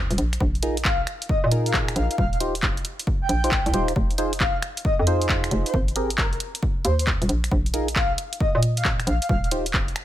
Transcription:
0.11 fm bass D#1, closed hi-hat
0.18 fm bass A#1, closed hi-hat
0.33 finger snap, closed hi-hat
0.40 fm bass A#1, kick
0.55 closed hi-hat
0.63 synth stab D#4 F4 G#4 A#4, closed hi-hat
0.77 closed hi-hat
0.85 soft synth lead F5, kick, clap
1.07 finger snap, closed hi-hat
1.22 closed hi-hat
1.29 soft synth lead D#5, kick
1.44 fm bass A#2, soft synth lead D#5
1.52 synth stab D#4 F4 G#4 A#4, closed hi-hat
1.66 soft synth lead F5, closed hi-hat
1.74 kick, clap
1.88 finger snap, closed hi-hat
1.96 fm bass A#1, soft synth lead F5, closed hi-hat
2.11 soft synth lead F5, closed hi-hat
2.18 fm bass D#1, soft synth lead F5, kick
2.33 soft synth lead F5, closed hi-hat
2.40 synth stab D#4 F4 G4 C5, closed hi-hat
2.55 closed hi-hat
2.63 kick, clap
2.77 closed hi-hat
2.85 closed hi-hat
2.99 closed hi-hat
3.07 kick
3.22 soft synth lead G5
3.29 fm bass A#1, closed hi-hat
3.44 synth stab D#4 F4 G4 C5, closed hi-hat
3.51 kick, clap
3.66 fm bass C2, closed hi-hat
3.74 fm bass D#1, synth stab D#4 F4 G4 C5, closed hi-hat
3.88 finger snap, closed hi-hat
3.96 fm bass F1, kick
4.11 closed hi-hat
4.18 synth stab D#4 F4 G#4 C5, closed hi-hat
4.33 closed hi-hat
4.40 soft synth lead F5, kick, clap
4.62 finger snap, closed hi-hat
4.77 closed hi-hat
4.85 soft synth lead D#5, kick
4.99 fm bass F2, soft synth lead D#5
5.07 synth stab D#4 F4 G#4 C5, closed hi-hat
5.22 closed hi-hat
5.29 kick, clap
5.44 finger snap, closed hi-hat
5.51 fm bass F1, closed hi-hat
5.66 soft synth lead C5, closed hi-hat
5.74 fm bass G#1, kick
5.88 closed hi-hat
5.96 synth stab C4 G4 G#4 A#4, closed hi-hat
6.10 closed hi-hat
6.18 soft synth lead A#4, kick, clap
6.33 soft synth lead A#4, closed hi-hat
6.40 closed hi-hat
6.55 closed hi-hat
6.63 kick
6.85 fm bass D#2, soft synth lead C5, closed hi-hat
6.99 soft synth lead C5, closed hi-hat
7.07 kick, clap
7.22 fm bass D#1, closed hi-hat
7.29 fm bass A#1, closed hi-hat
7.44 finger snap, closed hi-hat
7.52 fm bass A#1, kick
7.66 closed hi-hat
7.74 synth stab D#4 F4 G#4 A#4, closed hi-hat
7.88 closed hi-hat
7.96 soft synth lead F5, kick, clap
8.18 closed hi-hat
8.33 closed hi-hat
8.40 soft synth lead D#5, kick
8.55 fm bass A#2, soft synth lead D#5
8.63 closed hi-hat
8.77 soft synth lead F5, closed hi-hat
8.85 kick, clap
9.00 finger snap, closed hi-hat
9.07 fm bass A#1, soft synth lead F5, closed hi-hat
9.22 soft synth lead F5, closed hi-hat
9.29 fm bass D#1, soft synth lead F5, kick
9.44 soft synth lead F5, closed hi-hat
9.51 synth stab D#4 F4 G4 C5, closed hi-hat
9.66 closed hi-hat
9.74 kick, clap
9.88 closed hi-hat
9.96 finger snap, closed hi-hat

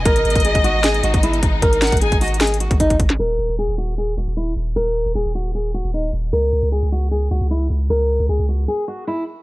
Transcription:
Already playing: string section B2
0.05 808-style bass G#1, string section G#3 D#4, nylon-string guitar A#4, violin section D#5, kick, closed hi-hat
0.16 closed hi-hat
0.25 808-style bass G#1, closed hi-hat
0.30 closed hi-hat
0.35 808-style bass G#1, kick, closed hi-hat
0.40 closed hi-hat
0.45 nylon-string guitar G#4, closed hi-hat
0.55 808-style bass G#1, kick, closed hi-hat
0.64 nylon-string guitar F#4, closed hi-hat
0.84 nylon-string guitar G#4, snare, closed hi-hat
0.94 closed hi-hat
1.03 808-style bass G#1, nylon-string guitar F#4, closed hi-hat
1.14 808-style bass G#1, kick, closed hi-hat
1.23 nylon-string guitar E4, closed hi-hat
1.33 closed hi-hat
1.43 808-style bass G#1, kick, closed hi-hat
1.62 808-style bass G#1, nylon-string guitar A#4, kick, closed hi-hat
1.73 closed hi-hat
1.82 violin section F#5, snare, closed hi-hat
1.87 closed hi-hat
1.92 808-style bass G#1, kick, closed hi-hat
1.97 closed hi-hat
2.01 808-style bass G#1, nylon-string guitar G#4, violin section G#5, closed hi-hat
2.12 808-style bass G#1, kick, closed hi-hat
2.21 nylon-string guitar F#4, violin section D#5, closed hi-hat, open hi-hat
2.28 closed hi-hat
2.34 closed hi-hat
2.41 nylon-string guitar G#4, snare, closed hi-hat
2.47 closed hi-hat
2.54 closed hi-hat
2.60 nylon-string guitar F#4, closed hi-hat
2.71 808-style bass G#1, kick, closed hi-hat
2.80 nylon-string guitar D#4, kick, closed hi-hat
2.90 kick, closed hi-hat
3.00 kick, closed hi-hat
3.10 snare
3.19 808-style bass D#1, nylon-string guitar A#4
3.39 808-style bass D#1
3.49 808-style bass D#1
3.59 nylon-string guitar G#4
3.69 808-style bass D#1
3.78 nylon-string guitar F#4
3.98 nylon-string guitar G#4
4.17 808-style bass D#1, nylon-string guitar F#4
4.28 808-style bass D#1
4.37 nylon-string guitar E4
4.56 808-style bass D#1
4.76 808-style bass D#1, nylon-string guitar A#4
5.06 808-style bass D#1
5.15 808-style bass D#1, nylon-string guitar G#4
5.26 808-style bass D#1
5.35 nylon-string guitar F#4
5.55 nylon-string guitar G#4
5.74 nylon-string guitar F#4
5.85 808-style bass D#1
5.94 nylon-string guitar D#4
6.13 808-style bass D#1
6.33 808-style bass C#2, nylon-string guitar A#4
6.53 808-style bass C#2
6.63 808-style bass C#2
6.72 nylon-string guitar G#4
6.83 808-style bass C#2
6.92 nylon-string guitar F#4
7.11 nylon-string guitar G#4
7.31 808-style bass C#2, nylon-string guitar F#4
7.41 808-style bass C#2
7.51 nylon-string guitar E4
7.70 808-style bass C#2
7.90 808-style bass C#2, nylon-string guitar A#4
8.20 808-style bass C#2
8.29 808-style bass C#2, nylon-string guitar G#4
8.39 808-style bass C#2
8.49 nylon-string guitar F#4
8.68 nylon-string guitar G#4
8.88 nylon-string guitar F#4
9.07 nylon-string guitar E4

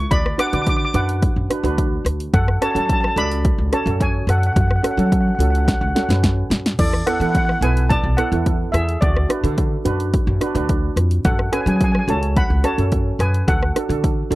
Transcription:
0.11 upright bass D2, steel pan D5 B5, kick, closed hi-hat
0.26 cross-stick
0.38 steel pan D4 F#4 B4 F#5 D6, cross-stick, closed hi-hat
0.47 steel pan D6
0.53 upright bass D3, steel pan D4 F#4 B4 D6, closed hi-hat
0.62 steel pan D6
0.67 steel pan D6, kick, closed hi-hat
0.77 steel pan D6
0.85 steel pan D6
0.94 upright bass F#2, steel pan D4 F#4 B4 F#5 D6, closed hi-hat
1.09 closed hi-hat
1.22 kick, closed hi-hat
1.36 upright bass F#2
1.50 steel pan D4 F#4 B4, cross-stick, closed hi-hat
1.63 upright bass D2, steel pan D4 F#4 B4, closed hi-hat
1.78 kick, closed hi-hat
2.05 upright bass D2, cross-stick, closed hi-hat
2.20 closed hi-hat
2.33 upright bass F#2, steel pan A4 F#5, kick, closed hi-hat
2.48 cross-stick
2.61 steel pan C#4 F#4 A4 C#5 A5, cross-stick, closed hi-hat
2.71 steel pan A5
2.75 upright bass F#3, steel pan C#4 F#4 A4 A5, closed hi-hat
2.85 steel pan A5, kick
2.90 steel pan A5, closed hi-hat
3.01 steel pan A5, cross-stick
3.07 steel pan A5
3.16 upright bass C#2, steel pan C#3 F#4 A4 D5 B5, closed hi-hat
3.32 closed hi-hat
3.45 kick, closed hi-hat
3.58 upright bass C#2
3.72 steel pan C#4 F#4 A4 C#5 A5, cross-stick, closed hi-hat
3.86 upright bass F#2, steel pan C#4 F#4 A4, closed hi-hat
4.01 steel pan C#5 G#5, kick, closed hi-hat
4.27 upright bass F#2, steel pan A4 F#5, cross-stick, closed hi-hat
4.38 steel pan F#5
4.43 steel pan F#5, closed hi-hat
4.53 upright bass F#2, steel pan F#5, kick, closed hi-hat
4.61 steel pan F#5
4.68 steel pan F#5, cross-stick
4.76 steel pan F#5
4.83 steel pan C#4 F#4 A4 F#5, cross-stick, closed hi-hat
4.91 steel pan F#5
4.97 upright bass F#3, steel pan C#4 F#4 A4 F#5, closed hi-hat
5.06 steel pan F#5
5.12 steel pan F#5, kick, closed hi-hat
5.21 steel pan F#5
5.28 steel pan F#5
5.35 upright bass C#2, steel pan F#5
5.40 steel pan C#4 F#4 A4 F#5, closed hi-hat
5.50 steel pan F#5
5.55 steel pan F#5, closed hi-hat
5.65 steel pan F#5, kick, snare, closed hi-hat
5.73 steel pan F#5
5.81 upright bass C#2, steel pan F#5
5.88 steel pan F#5
5.95 steel pan C#4 F#4 A4 F#5, snare, closed hi-hat
6.04 steel pan F#5
6.09 upright bass F#2, steel pan C#4 F#4 B4, snare, closed hi-hat
6.23 kick, snare, closed hi-hat
6.50 upright bass F#2, snare, closed hi-hat
6.66 snare, closed hi-hat
6.79 upright bass E2, steel pan A4 D5, kick, closed hi-hat, crash
6.93 cross-stick
7.07 steel pan B3 E4 A4 F#5, cross-stick, closed hi-hat
7.14 steel pan F#5
7.20 upright bass E3, steel pan B3 E4 A4 F#5, closed hi-hat
7.30 steel pan F#5
7.35 steel pan F#5, kick, closed hi-hat
7.45 steel pan F#5
7.49 steel pan F#5, cross-stick
7.61 upright bass B1, steel pan B3 E4 A4 B4 G#5, closed hi-hat
7.77 closed hi-hat
7.89 steel pan D5 A5, kick, closed hi-hat
8.04 upright bass B1
8.17 steel pan B3 E4 A4 F#5, cross-stick, closed hi-hat
8.32 upright bass E2, steel pan B3 E4 A4, closed hi-hat
8.46 kick, closed hi-hat
8.72 upright bass E2, steel pan G#4 E5, cross-stick, closed hi-hat
8.89 closed hi-hat
9.01 upright bass D2, steel pan F#4 D5, kick, closed hi-hat
9.16 cross-stick
9.29 steel pan D4 F#4 B4, cross-stick, closed hi-hat
9.44 upright bass D3, steel pan D4 F#4 A4, closed hi-hat
9.58 kick, closed hi-hat
9.85 upright bass F#2, steel pan D4 F#4 B4, closed hi-hat
10.00 closed hi-hat
10.14 kick, closed hi-hat
10.27 upright bass F#2
10.41 steel pan D4 F#4 B4, cross-stick, closed hi-hat
10.55 upright bass D2, steel pan D4 F#4 B4, closed hi-hat
10.69 kick, closed hi-hat
10.96 upright bass F2, cross-stick, closed hi-hat
11.11 closed hi-hat
11.25 upright bass F#2, steel pan A4 F#5, kick, closed hi-hat
11.39 cross-stick
11.52 steel pan C#4 F#4 A4 B4 G#5, cross-stick, closed hi-hat
11.61 steel pan G#5
11.66 upright bass F#3, steel pan C#4 F#4 G#4 G#5, closed hi-hat
11.76 steel pan G#5
11.81 steel pan G#5, kick, closed hi-hat
11.92 steel pan G#5, cross-stick
11.99 steel pan G#5
12.08 upright bass C#2, steel pan C#4 F#4 A4 C#5 A5, closed hi-hat
12.23 closed hi-hat
12.36 steel pan F#5 B5, kick, closed hi-hat
12.50 upright bass C#2
12.64 steel pan C#4 F#4 A4 C#5 A5, cross-stick, closed hi-hat
12.78 upright bass F#2, steel pan C#4 F#4 A4, closed hi-hat
12.92 kick, closed hi-hat
13.19 upright bass F#2, steel pan B4 G#5, cross-stick, closed hi-hat
13.34 closed hi-hat
13.48 upright bass D2, steel pan A4 F#5, kick, closed hi-hat
13.63 cross-stick
13.76 steel pan D4 F#4 A4, cross-stick, closed hi-hat
13.89 upright bass D3, steel pan D4 F#4 A4, closed hi-hat
14.04 kick, closed hi-hat
14.30 upright bass A1, steel pan D4 F#4 A4, closed hi-hat

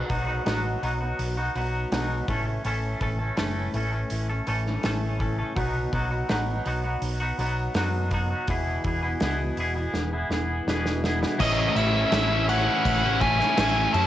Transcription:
Already playing: clean electric guitar B2
0.09 fingered electric bass B1, clean electric guitar F#3 B3 D#4 F#4, kick, open hi-hat
0.27 clean electric guitar B3 D#4 F#4
0.45 fingered electric bass A1, clean electric guitar B2 F#3 B3 D#4 F#4, snare, open hi-hat
0.82 fingered electric bass B1, clean electric guitar F#3 B3 D#4 F#4, open hi-hat
1.01 clean electric guitar B3 D#4 F#4
1.19 fingered electric bass B1, open hi-hat
1.37 clean electric guitar B3 D#4 F#4
1.55 fingered electric bass B1, clean electric guitar F#3 B3 D#4 F#4, open hi-hat
1.92 fingered electric bass B1, clean electric guitar B2 F#3 B3 D#4 F#4, snare, open hi-hat
2.28 fingered electric bass A1, clean electric guitar A2 E3 A3 C#4 A4, kick, open hi-hat
2.46 clean electric guitar A3 C#4 A4
2.65 fingered electric bass A1, clean electric guitar A2 E3 A3 C#4 A4, open hi-hat
3.01 fingered electric bass A1, clean electric guitar E3 A3 C#4 A4, kick, open hi-hat
3.19 clean electric guitar A3 C#4 A4
3.37 fingered electric bass F#1, clean electric guitar A2 E3 A3 C#4 A4, snare, open hi-hat
3.74 fingered electric bass A1, clean electric guitar E3 A3 C#4 A4, open hi-hat
3.93 clean electric guitar A3 C#4 A4
4.10 fingered electric bass A1, open hi-hat
4.29 clean electric guitar A3 C#4 A4
4.47 fingered electric bass A1, clean electric guitar E3 A3 C#4 A4, open hi-hat
4.66 snare
4.83 fingered electric bass A1, clean electric guitar A2 E3 A3 C#4 A4, snare, open hi-hat
5.19 clean electric guitar E3 A3 C#4 A4, kick, open hi-hat
5.38 clean electric guitar A3 C#4 A4
5.55 fingered electric bass B1, clean electric guitar B2 F#3 B3 D#4 F#4, kick, open hi-hat
5.93 fingered electric bass B1, clean electric guitar F#3 B3 D#4 F#4, kick, open hi-hat
6.11 clean electric guitar B3 D#4 F#4
6.29 fingered electric bass A1, clean electric guitar B2 F#3 B3 D#4 F#4, snare, open hi-hat
6.65 fingered electric bass B1, clean electric guitar F#3 B3 D#4 F#4, open hi-hat
6.84 clean electric guitar B3 D#4 F#4
7.02 fingered electric bass B1, open hi-hat
7.20 clean electric guitar B3 D#4 F#4
7.38 fingered electric bass B1, clean electric guitar F#3 B3 D#4 F#4, open hi-hat
7.75 fingered electric bass F#2, clean electric guitar B2 F#3 B3 D#4 F#4, snare, open hi-hat
8.11 clean electric guitar F#3 B3 D#4 F#4, kick, open hi-hat
8.31 clean electric guitar B3 D#4 F#4
8.47 fingered electric bass E1, clean electric guitar E2 B2 E3 B3 E4 G#4, kick, open hi-hat
8.84 fingered electric bass E1, clean electric guitar E3 B3 E4 G#4, kick, open hi-hat
9.03 clean electric guitar E3 B3 E4 G#4
9.20 fingered electric bass C#2, clean electric guitar E2 B2 E3 B3 E4 G#4, snare, open hi-hat
9.57 fingered electric bass E1, clean electric guitar E3 B3 E4 G#4, open hi-hat
9.76 clean electric guitar E3 B3 E4 G#4
9.93 fingered electric bass E1, snare
10.13 clean electric guitar E3 B3 E4 G#4
10.29 fingered electric bass E1, clean electric guitar E3 B3 E4, snare
10.33 clean electric guitar G#4
10.66 fingered electric bass E1, clean electric guitar E2 B2 E3 B3 E4 G#4, snare
10.86 snare
11.04 clean electric guitar E3 B3 E4 G#4, snare
11.22 clean electric guitar E3 B3 E4 G#4, snare
11.39 fingered electric bass A1, overdriven electric guitar A2 E3 A3 C#4 E4, lead electric guitar D#5, kick, crash
11.76 fingered electric bass A1, overdriven electric guitar E3 A3 C#4 E4, lead electric guitar E5, crash
11.94 overdriven electric guitar A3 C#4 E4
12.12 fingered electric bass A1, overdriven electric guitar A2 E3 A3 C#4 E4, snare, crash
12.29 overdriven electric guitar A3 C#4 E4
12.48 overdriven electric guitar E3 A3 C#4 E4, lead electric guitar F#5, crash
12.66 overdriven electric guitar A3 C#4 E4
12.85 fingered electric bass A1, kick, crash
13.02 overdriven electric guitar A3 C#4 E4
13.20 overdriven electric guitar E3 A3 C#4 E4, lead electric guitar G#5, kick, crash
13.39 overdriven electric guitar A3 C#4 E4, snare
13.57 fingered electric bass A1, overdriven electric guitar A2 E3 A3 C#4 E4, snare, crash
13.93 fingered electric bass F#2, overdriven electric guitar E3 A3 C#4 E4, lead electric guitar A5, crash

